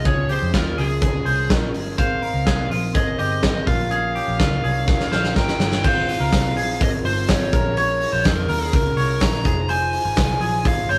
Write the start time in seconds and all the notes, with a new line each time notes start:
0.04 C#2 C#3 F3 G#3 C#4 F4 G#4 C#5, kick, closed hi-hat
0.29 F3 G#3 C#4 G4 C5, open hi-hat
0.42 F2
0.53 D#2 C#3 F3 G#3 C#4 F4 A#4, kick, snare, closed hi-hat
0.57 A#4
0.77 C#2 F3 G#3 C#4 G#4, open hi-hat
1.01 C#3 F3 G#3 C#4 F4 G#4, kick, closed hi-hat
1.25 C2 F3 G#3 C#4 C5, open hi-hat
1.50 A#1 C#3 F3 G#3 C#4 F4 A#4, kick, snare, closed hi-hat
1.73 G1 F3 G#3 C#4 G#4, open hi-hat
1.97 G#1 G#3 A#3 C4 D#4 G#4 A#4 C5 F5, kick, closed hi-hat
2.22 D#4 G#4 A#4 C5, open hi-hat
2.34 C#2
2.46 G#3 A#3 C4 D#4 G#4 A#4 C5, kick, snare, closed hi-hat
2.70 A#1 D#4 F4 G#4 C5, open hi-hat
2.94 G#1 A#3 C4 D#4 G#4 A#4 C5 D#5, kick, closed hi-hat
3.18 G1 D#4 G4 G#4 C5 D#5, open hi-hat
3.42 G#1 G#3 A#3 C4 D#4 G#4 A#4 C5, kick, snare, closed hi-hat
3.66 A#1 A#3 C#4 F4 A#4 C#5 F5, kick, open hi-hat
3.90 A#2 F3 A#3 C#4 F4 G#4 C#5 F5, closed hi-hat
4.15 A#3 C#4 F4 G4 C#5, open hi-hat
4.28 A#1
4.38 C#2 A#2 F3 A#3 C#4 F4 A#4 C#5, kick, snare, closed hi-hat
4.63 C2 A#3 C#4 F4 G#4 C#5, open hi-hat
4.86 A#3 C#4 F4 A#4 C#5, kick, snare
5.00 snare
5.11 A#1 A#3 C#4 F4 C5 C#5, snare
5.24 snare
5.34 G#1 A#2 F3 A#3 C#4 F4 A#4 C#5 G5, kick, snare
5.48 snare
5.59 G1 A#3 C#4 F4 G#4 C#5, snare
5.72 snare
5.84 G#1 G#3 C4 D#4 F4 G#4 C5 F5, kick, crash, tambourine
6.07 D#4 F4 C5, hi-hat pedal, open hi-hat, tambourine
6.20 C#2 A#4
6.31 G#3 C4 D#4 F4 G#4 C5, kick, snare, hi-hat pedal, open hi-hat, tambourine
6.55 A#1 D#4 F4 G#4 C5, hi-hat pedal, open hi-hat, tambourine
6.79 G#1 G#3 C4 D#4 F4 A#4 C5 D#5, kick, hi-hat pedal, open hi-hat
7.04 G1 D#4 F4 C5, hi-hat pedal, open hi-hat
7.28 G#1 G#3 C4 D#4 F4 G#4 C5 C#5, kick, snare, hi-hat pedal, open hi-hat, tambourine
7.51 A#1 G#3 C#4 F4 G#4 A#4, kick, hi-hat pedal, open hi-hat, tambourine
7.76 A#2 F3 G#3 C#4 F4 A#4 C#5, hi-hat pedal, open hi-hat, tambourine
8.01 G#3 C#4 F4 A#4, hi-hat pedal, open hi-hat, tambourine
8.13 A#1 C5
8.24 F2 A#2 F3 G#3 C#4 F4 G#4 A#4, kick, snare, hi-hat pedal, open hi-hat, tambourine
8.48 D#2 G#3 C#4 F4 A#4, hi-hat pedal, open hi-hat, tambourine
8.73 C#2 G#3 C#4 F4 G#4 A#4, kick, hi-hat pedal, open hi-hat, tambourine
8.97 C2 G#3 C#4 F4 A#4 C#5, hi-hat pedal, open hi-hat, tambourine
9.20 A#1 A#2 F3 G#3 C#4 F4 G#4 A#4 A#5, kick, snare, hi-hat pedal, open hi-hat, tambourine
9.44 F1 D#4 F4 G#4 C5, kick, hi-hat pedal, open hi-hat, tambourine
9.69 F3 G#3 D#4 F4 C5 G#5, hi-hat pedal, open hi-hat, tambourine
9.93 D#4 F4 C5, hi-hat pedal, open hi-hat, tambourine
10.05 G#1 A#4
10.16 C2 F3 G#3 D#4 F4 G#4 C5, kick, snare, hi-hat pedal, open hi-hat, tambourine
10.40 A#1 D#4 F4 G#4 C5, hi-hat pedal, open hi-hat, tambourine
10.64 G#1 G#3 D#4 F4 G#4 C5 F5, kick, hi-hat pedal, open hi-hat, tambourine
10.88 G1 D#4 F4 C5 C#5, hi-hat pedal, open hi-hat, tambourine